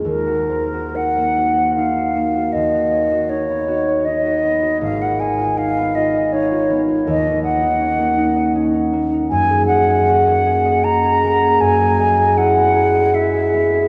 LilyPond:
<<
  \new Staff \with { instrumentName = "Flute" } { \time 3/4 \key ees \minor \tempo 4 = 78 bes'4 ges''4 f''4 | ees''4 des''4 ees''4 | f''16 ges''16 aes''8 f''8 ees''8 des''8. r16 | ees''8 ges''4. r4 |
aes''8 ges''4. bes''4 | gis''4 ges''4 e''4 | }
  \new Staff \with { instrumentName = "Harp" } { \time 3/4 \key ees \minor <ees, ees'>16 ges'16 c''16 ges'16 ees'16 bes16 ges'16 c''16 ees'16 ges'16 bes16 ges'16 | ees,16 ges'16 des''16 ges'16 ees'16 ces'16 ges'16 des''16 ees'16 ges'16 ces'16 ges'16 | aes,,16 f'16 ees''16 f'16 ees'16 ces'16 f'16 ees''16 ees'16 f'16 ces'16 f'16 | ees,16 ees'16 ees''16 ees'16 des'16 bes16 ees'16 ees''16 des'16 ees'16 bes16 ees'16 |
ges,16 aes'16 ees''16 aes'16 des'16 bes16 aes'16 ees''16 des'16 aes'16 bes16 aes'16 | ges,16 gis'16 dis''16 gis'16 e'16 b16 gis'16 dis''16 e'16 gis'16 b16 gis'16 | }
>>